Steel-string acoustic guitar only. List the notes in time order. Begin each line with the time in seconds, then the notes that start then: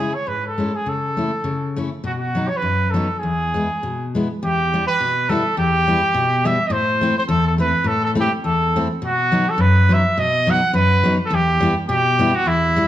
Already playing: C#3
0.00 G#3 C#4 E4
0.27 G#2
0.58 G#3 C#4 E4
0.86 C#3
1.17 A3 C#4 E4
1.44 C#3
1.76 A3 C#4 E4
2.04 B2
2.35 F#3 B3 D#4
2.62 F#2
2.94 F#3 B3 D#4
3.23 E2
3.54 G#3 B3 E4
3.83 B2
4.15 G#3 B3 E4
4.43 E2
4.74 G3 B3 E4
5.00 B2
5.29 G3 B3 E4
5.57 E2
5.88 G3 B3 E4
6.14 B2
6.45 G3 B3 E4
6.70 A2
7.01 A3 C4 E4
7.29 E2
7.58 A3 C4 E4
7.84 A2
8.15 A3 C4 E4
8.44 E2
8.76 A3 C4 E4
9.02 B2
9.32 F#3 B3 D#4
9.58 F#2
9.89 F#3 B3 D#4
10.17 B2
10.47 F#3 B3 D#4
10.74 F#2
11.04 F#3 B3 D#4
11.30 E2
11.60 G3 B3 E4
11.89 B2
12.19 G3 B3 E4
12.46 E2
12.76 G3 B3 E4